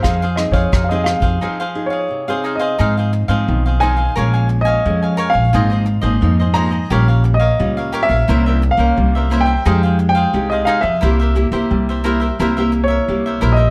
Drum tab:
HH |xxxxxxxx--------|----------------|----------------|----------------|
SD |r-r-r-r---------|----------------|----------------|----------------|
BD |o--oo--o--------|----------------|----------------|----------------|

HH |----------------|
SD |----------------|
BD |----------------|